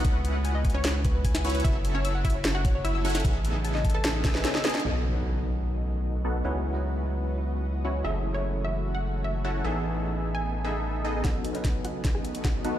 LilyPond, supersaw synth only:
\new Staff \with { instrumentName = "Supersaw synth" } { \time 4/4 \key b \mixolydian \tempo 4 = 150 cis'2.~ cis'8 <cis' e' fis' b' cis''>8 | e''2.~ e''8 <cis' e' fis' a' fis''>8 | <b dis' gis' a' e''>2~ <b dis' gis' a' e''>8 <b dis' gis' a' e''>4 <b dis' gis' a' dis''>8 | <b dis' fis' a' dis''>2.~ <b dis' fis' a' dis''>8 <b dis' fis' a' fis''>8 |
<cis' e' fis' b' fis''>2.~ <cis' e' fis' b' fis''>8 <cis' e' fis' b' cis''>8 | <cis' e' fis' a' e''>2.~ <cis' e' fis' a' e''>8 <cis' e' fis' a' fis''>8 | <b dis' gis' a' e''>2~ <b dis' gis' a' e''>8 <b dis' gis' a' e''>4 <b dis' gis' a' dis''>8 | <b fis' a'>2.~ <b fis' a'>8 <b dis' fis' a' fis''>8 | }